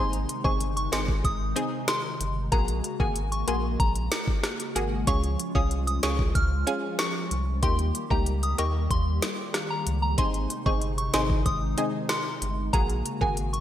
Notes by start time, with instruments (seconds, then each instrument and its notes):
Already playing: sub bass G#1, analog synth pad C3 D#3 G#3 D#4, synth pluck C4 D#4 G#4
0.13 closed hi-hat
0.29 closed hi-hat
0.44 sub bass G1, synth pluck C4 D#4 G#4, synth bell C#6, kick
0.61 closed hi-hat
0.77 synth bell C#6, closed hi-hat
0.92 sub bass G#1, synth pluck C4 D#4 G#4, synth bell C6, snare, closed hi-hat
1.08 kick
1.24 sub bass G#1, synth bell D#6, kick, closed hi-hat
1.56 synth pluck C4 D#4 G#4, closed hi-hat
1.88 synth bell C6, cross-stick, snare, closed hi-hat
2.20 sub bass G1, closed hi-hat
2.52 sub bass A#1, analog synth pad C#3 G#3 A#3 F#4, synth pluck A#3 F#4 G#4, synth bell A#5, kick, closed hi-hat
2.68 closed hi-hat
2.84 closed hi-hat
3.00 sub bass G#1, synth pluck A#3 F#4 G#4, synth bell G#5, kick
3.16 closed hi-hat
3.32 synth bell C#6, closed hi-hat
3.48 sub bass A#1, synth pluck A#3 F#4 G#4, synth bell C6, closed hi-hat
3.80 sub bass A#1, synth bell A#5, kick, closed hi-hat
3.95 closed hi-hat
4.12 snare, closed hi-hat
4.28 kick
4.44 cross-stick, snare, closed hi-hat
4.60 closed hi-hat
4.75 sub bass G#1, synth pluck A#3 F#4 G#4, closed hi-hat
5.07 sub bass C#2, analog synth pad F3 C#4 F4, synth pluck C#4 F4 G#4, synth bell C#6, kick, closed hi-hat
5.24 closed hi-hat
5.40 closed hi-hat
5.55 sub bass C2, synth pluck C#4 F4 G#4, synth bell D#6, kick
5.71 closed hi-hat
5.87 synth bell D#6, closed hi-hat
6.03 sub bass C#2, synth pluck C#4 F4 G#4, synth bell C#6, snare, closed hi-hat
6.19 kick
6.35 sub bass C#2, synth bell F6, kick, closed hi-hat
6.67 synth pluck C#4 F4 G#4, closed hi-hat
6.99 synth bell C#6, cross-stick, snare, closed hi-hat
7.31 sub bass C2, closed hi-hat
7.62 sub bass D#2, analog synth pad D#3 G3 A#3 G4, synth pluck A#3 D#4 G4, synth bell C6, kick, closed hi-hat
7.79 closed hi-hat
7.95 closed hi-hat
8.10 sub bass C#2, synth pluck A#3 D#4 G4, synth bell A#5, kick
8.26 closed hi-hat
8.43 synth bell D#6, closed hi-hat
8.58 sub bass D#2, synth pluck A#3 D#4 G4, synth bell C#6, closed hi-hat
8.91 sub bass D#2, synth bell C6, kick, closed hi-hat
9.22 snare, closed hi-hat
9.54 cross-stick, snare, closed hi-hat
9.70 synth bell A#5
9.86 sub bass C#2, closed hi-hat
10.02 synth bell A#5
10.18 sub bass G#1, analog synth pad C3 G#3 D#4, synth pluck C4 D#4 G#4, synth bell C6, kick, closed hi-hat
10.34 closed hi-hat
10.50 closed hi-hat
10.66 sub bass G1, synth pluck C4 D#4 G#4, synth bell C#6, kick
10.82 closed hi-hat
10.98 synth bell C#6, closed hi-hat
11.14 sub bass G#1, synth pluck C4 D#4 G#4, synth bell C6, snare, closed hi-hat
11.30 kick
11.46 sub bass G#1, synth bell D#6, kick, closed hi-hat
11.78 synth pluck C4 D#4 G#4, closed hi-hat
12.09 synth bell C6, cross-stick, snare, closed hi-hat
12.42 sub bass G1, closed hi-hat
12.73 sub bass A#1, analog synth pad C#3 A#3 F#4, synth pluck A#3 F#4 G#4, synth bell A#5, kick, closed hi-hat
12.90 closed hi-hat
13.06 closed hi-hat
13.21 sub bass G#1, synth pluck A#3 F#4 G#4, synth bell G#5, kick
13.37 closed hi-hat
13.53 synth bell C#6, closed hi-hat